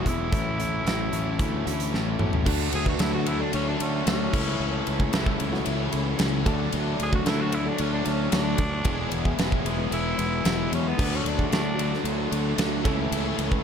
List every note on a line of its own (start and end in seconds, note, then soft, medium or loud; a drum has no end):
0.05 0.31 E1 loud
0.05 0.32 E2 medium
0.05 0.32 B2 medium
0.05 0.32 E3 medium
0.05 0.32 G#3 medium
0.05 0.27 B3 medium
0.05 0.33 B3 medium
0.05 0.27 E4 medium
0.05 2.17 E4 loud
0.05 0.27 G#4 medium
0.05 kick medium
0.05 closed hi-hat medium
0.09 0.33 E4 medium
0.31 0.83 A1 loud
0.31 0.58 A2 medium
0.31 0.59 E3 medium
0.31 0.60 A3 medium
0.31 1.18 C#4 medium
0.31 1.18 F#4 medium
0.31 1.18 A4 medium
0.31 kick loud
0.31 closed hi-hat medium
0.35 0.60 C#4 loud
0.35 0.60 E4 loud
0.59 0.85 A2 medium
0.59 0.86 E3 loud
0.59 0.86 A3 medium
0.59 0.87 C#4 medium
0.59 0.87 E4 loud
0.59 closed hi-hat medium
0.85 1.11 A1 medium
0.85 1.12 A2 medium
0.85 1.12 E3 medium
0.85 1.13 A3 medium
0.85 1.14 C#4 medium
0.85 1.14 E4 medium
0.85 snare loud
0.85 closed hi-hat medium
1.13 1.38 A1 medium
1.13 1.39 A2 loud
1.13 1.39 E3 loud
1.13 1.39 A3 loud
1.13 1.40 C#4 loud
1.13 1.41 E4 loud
1.13 closed hi-hat medium
1.39 1.65 D2 medium
1.39 1.65 A2 medium
1.39 1.65 E3 medium
1.39 1.66 A3 medium
1.39 1.66 C#4 loud
1.39 1.67 E4 medium
1.39 kick loud
1.39 closed hi-hat medium
1.65 1.92 D2 medium
1.65 1.92 A2 medium
1.65 1.92 E3 medium
1.65 1.93 A3 medium
1.65 2.08 C#4 medium
1.65 1.93 C#4 medium
1.65 1.94 E4 medium
1.65 2.09 F#4 medium
1.65 2.09 A4 medium
1.65 closed hi-hat medium
1.80 closed hi-hat medium
1.93 2.19 A1 medium
1.93 2.18 A2 medium
1.93 2.19 E3 loud
1.93 2.20 A3 loud
1.93 2.20 C#4 loud
1.93 2.21 E4 loud
1.93 snare medium
2.19 2.45 A1 medium
2.19 2.45 A2 medium
2.19 2.45 E3 medium
2.19 2.45 A3 medium
2.19 2.41 C#4 medium
2.19 2.46 C#4 medium
2.19 2.46 E4 medium
2.19 2.41 F#4 medium
2.19 2.41 A4 medium
2.19 mid tom medium
2.33 floor tom medium
2.45 2.68 D2 loud
2.45 3.78 D3 medium
2.45 3.25 D3 medium
2.45 3.78 F#3 loud
2.45 3.25 F#3 medium
2.45 2.78 A3 medium
2.45 4.31 A3 medium
2.45 3.79 A3 loud
2.45 3.29 A3 medium
2.45 2.78 D4 medium
2.45 4.31 D4 medium
2.45 3.77 D4 loud
2.45 3.26 D4 medium
2.45 4.31 F#4 medium
2.45 2.78 F#4 medium
2.45 4.31 A4 medium
2.45 2.78 A4 loud
2.45 kick loud
2.45 crash loud
2.49 3.25 F#4 medium
2.73 2.95 D2 medium
2.73 2.87 G#4 medium
2.73 ride medium
2.85 3.29 A3 medium
2.85 3.29 D4 medium
2.85 3.29 F#4 medium
2.85 3.03 F#4 medium
2.85 3.29 B4 medium
2.85 kick medium
2.99 3.42 D2 medium
2.99 3.13 E4 medium
2.99 snare loud
2.99 ride loud
3.14 3.29 F#4 medium
3.26 4.34 D3 medium
3.26 4.32 F#3 medium
3.26 4.35 A3 medium
3.26 4.32 D4 medium
3.26 3.42 E4 medium
3.26 4.32 F#4 loud
3.26 ride medium
3.39 4.25 A3 medium
3.39 4.25 D4 medium
3.39 3.53 D4 medium
3.39 4.25 F#4 medium
3.39 4.25 A4 medium
3.53 3.75 D2 medium
3.53 3.70 C#4 medium
3.53 ride loud
3.68 3.83 D4 medium
3.78 4.01 D2 medium
3.78 4.04 D3 medium
3.78 4.04 F#3 medium
3.78 4.06 A3 medium
3.78 4.07 C#4 medium
3.78 4.04 D4 medium
3.78 ride medium
4.05 4.28 D2 medium
4.05 4.31 D3 medium
4.05 4.31 F#3 medium
4.05 4.33 A3 medium
4.05 5.11 C#4 loud
4.05 4.32 D4 medium
4.05 snare loud
4.05 ride loud
4.32 4.55 C#2 medium
4.32 5.63 C#3 loud
4.32 5.12 C#3 medium
4.32 5.64 E3 medium
4.32 5.12 E3 medium
4.32 4.86 A3 medium
4.32 5.66 A3 loud
4.32 6.45 A3 medium
4.32 5.15 A3 loud
4.32 4.86 C#4 medium
4.32 6.44 C#4 medium
4.32 4.86 E4 medium
4.32 5.65 E4 loud
4.32 6.45 E4 medium
4.32 4.86 A4 loud
4.32 6.45 C#5 medium
4.32 kick loud
4.32 crash loud
4.37 5.13 C#4 loud
4.37 5.14 E4 loud
4.60 4.81 C#2 loud
4.87 5.08 C#2 medium
4.87 ride medium
4.98 5.42 A3 medium
4.98 5.42 C#4 medium
4.98 5.42 E4 medium
4.98 5.42 G#4 loud
4.98 kick medium
5.13 5.35 C#2 medium
5.13 6.45 C#3 medium
5.13 6.45 E3 medium
5.13 6.46 A3 medium
5.13 6.46 C#4 medium
5.13 6.47 E4 medium
5.13 snare loud
5.13 ride loud
5.26 kick loud
5.40 5.62 C#2 medium
5.40 ride medium
5.52 6.38 A3 medium
5.52 6.38 C#4 medium
5.52 6.38 E4 medium
5.52 6.38 F#4 loud
5.52 snare soft
5.65 5.88 C#2 medium
5.65 5.91 C#3 medium
5.65 5.91 E3 loud
5.65 5.92 A3 medium
5.65 5.90 E4 medium
5.65 ride loud
5.91 6.14 C#2 medium
5.91 6.45 C#3 medium
5.91 6.45 E3 medium
5.91 6.45 A3 medium
5.91 6.44 E4 medium
5.91 ride medium
6.19 6.46 C#2 medium
6.19 snare loud
6.19 ride loud
6.45 6.67 D2 medium
6.45 7.77 D3 loud
6.45 7.25 D3 medium
6.45 7.78 F#3 medium
6.45 7.25 F#3 loud
6.45 6.99 A3 loud
6.45 7.78 A3 loud
6.45 8.84 A3 medium
6.45 7.26 A3 medium
6.45 6.99 D4 loud
6.45 7.78 D4 loud
6.45 8.84 D4 medium
6.45 6.99 F#4 medium
6.45 8.85 F#4 medium
6.45 6.99 A4 loud
6.45 8.85 A4 medium
6.45 kick loud
6.45 ride medium
6.49 7.26 D4 loud
6.49 7.27 F#4 loud
6.72 6.94 D2 loud
6.72 ride loud
7.00 7.21 D2 medium
7.00 7.14 G#4 loud
7.00 ride medium
7.12 7.55 A3 medium
7.12 7.55 D4 medium
7.12 7.55 F#4 medium
7.12 7.30 F#4 medium
7.12 7.56 A4 loud
7.12 kick medium
7.26 7.68 D2 medium
7.26 8.58 D3 medium
7.26 8.58 F#3 medium
7.26 8.59 A3 medium
7.26 8.60 D4 medium
7.26 7.43 E4 medium
7.26 snare loud
7.26 ride loud
7.31 8.60 F#4 medium
7.41 7.57 F#4 medium
7.52 7.70 E4 medium
7.52 ride medium
7.66 8.51 A3 medium
7.66 8.51 D4 medium
7.66 7.82 D4 medium
7.66 8.51 F#4 medium
7.66 8.51 A4 medium
7.78 8.01 D2 loud
7.78 8.04 D3 medium
7.78 8.04 F#3 medium
7.78 8.05 A3 loud
7.78 7.93 C#4 medium
7.78 8.04 D4 loud
7.78 ride loud
7.94 8.10 D4 medium
8.05 8.27 D2 medium
8.05 8.58 D3 medium
8.05 8.58 F#3 medium
8.05 8.58 A3 medium
8.05 8.33 C#4 medium
8.05 8.57 D4 loud
8.05 ride medium
8.32 8.54 D2 medium
8.32 9.37 D4 loud
8.32 snare loud
8.32 ride loud
8.58 8.80 D2 loud
8.58 kick medium
8.58 ride medium
8.84 9.06 E1 loud
8.84 9.64 E2 medium
8.84 9.64 B2 medium
8.84 10.16 E3 loud
8.84 9.65 E3 medium
8.84 10.17 G#3 loud
8.84 9.18 G#3 medium
8.84 10.97 G#3 medium
8.84 9.65 G#3 medium
8.84 9.18 B3 medium
8.84 10.17 B3 loud
8.84 10.97 B3 medium
8.84 9.18 E4 medium
8.84 10.17 E4 loud
8.84 10.97 E4 medium
8.84 9.64 E4 loud
8.84 9.18 G#4 medium
8.84 10.97 G#4 medium
8.84 kick loud
8.84 ride loud
8.88 9.65 B3 loud
8.88 9.64 G#4 loud
9.11 9.33 E1 medium
9.11 ride medium
9.25 9.68 G#3 loud
9.25 9.68 B3 medium
9.25 9.68 E4 medium
9.25 9.68 G#4 loud
9.25 kick medium
9.39 9.60 E1 medium
9.39 snare loud
9.39 ride loud
9.52 kick medium
9.65 9.86 E1 medium
9.65 10.99 E2 medium
9.65 10.98 B2 medium
9.65 10.98 E3 medium
9.65 10.98 G#3 medium
9.65 10.97 B3 medium
9.65 10.97 E4 medium
9.65 10.97 G#4 medium
9.65 ride medium
9.78 10.64 G#3 medium
9.78 10.64 B3 medium
9.78 10.64 E4 medium
9.78 10.64 B4 medium
9.91 10.13 E1 medium
9.91 10.70 E4 loud
9.91 ride loud
10.18 10.40 E1 loud
10.18 10.43 E3 medium
10.18 10.44 G#3 medium
10.18 10.44 B3 medium
10.18 10.43 E4 medium
10.18 ride medium
10.44 10.66 E1 medium
10.44 10.96 E3 medium
10.44 10.97 G#3 medium
10.44 10.97 B3 medium
10.44 10.97 E4 medium
10.44 snare loud
10.44 ride loud
10.72 10.93 E2 medium
10.72 10.90 C#4 medium
10.72 ride medium
10.88 11.17 B3 loud
10.97 11.20 D2 loud
10.97 12.29 D3 loud
10.97 11.77 D3 medium
10.97 12.30 F#3 loud
10.97 11.77 F#3 loud
10.97 11.30 A3 medium
10.97 12.31 A3 loud
10.97 12.82 A3 medium
10.97 11.81 A3 medium
10.97 11.30 D4 medium
10.97 12.29 D4 loud
10.97 12.83 D4 medium
10.97 11.30 F#4 medium
10.97 12.83 F#4 medium
10.97 11.30 A4 medium
10.97 kick loud
10.97 crash loud
11.02 11.78 D4 loud
11.02 11.77 F#4 medium
11.16 11.29 C#4 medium
11.25 11.46 D2 medium
11.25 11.52 D4 medium
11.25 ride medium
11.38 11.81 A3 medium
11.38 11.81 D4 medium
11.38 11.81 F#4 medium
11.38 11.81 G#4 medium
11.38 kick medium
11.51 11.93 D2 medium
11.51 12.04 D4 loud
11.51 snare loud
11.51 ride medium
11.79 12.84 D3 medium
11.79 12.83 F#3 medium
11.79 12.86 A3 medium
11.79 12.84 D4 medium
11.79 12.83 F#4 medium
11.79 ride medium
11.92 12.77 A3 medium
11.92 12.77 D4 medium
11.92 12.77 F#4 medium
11.92 12.77 A4 medium
11.92 snare soft
12.04 12.25 D2 medium
12.04 ride loud
12.31 12.53 D2 medium
12.31 12.56 D3 medium
12.31 12.57 F#3 medium
12.31 12.58 A3 loud
12.31 12.56 D4 medium
12.31 ride medium
12.57 12.87 D2 medium
12.57 12.83 D3 medium
12.57 12.83 F#3 medium
12.57 12.84 A3 medium
12.57 12.84 D4 medium
12.57 snare loud
12.57 ride loud
12.83 13.06 C#2 medium
12.83 13.63 C#3 medium
12.83 13.62 C#3 medium
12.83 13.63 E3 loud
12.83 13.63 E3 medium
12.83 13.63 A3 medium
12.83 13.38 A3 loud
12.83 13.63 A3 loud
12.83 13.63 A3 medium
12.83 13.63 C#4 medium
12.83 13.38 C#4 loud
12.83 13.63 C#4 loud
12.83 13.63 E4 medium
12.83 13.38 E4 loud
12.83 13.63 E4 loud
12.83 13.63 A4 medium
12.83 13.38 A4 loud
12.83 kick loud
12.83 ride medium
12.87 13.63 E4 loud
13.12 13.32 C#2 loud
13.12 ride loud
13.38 13.59 C#2 medium
13.38 ride medium
13.51 13.63 A3 medium
13.51 13.63 C#4 medium
13.51 13.63 E4 medium
13.51 13.63 B4 medium
13.51 kick medium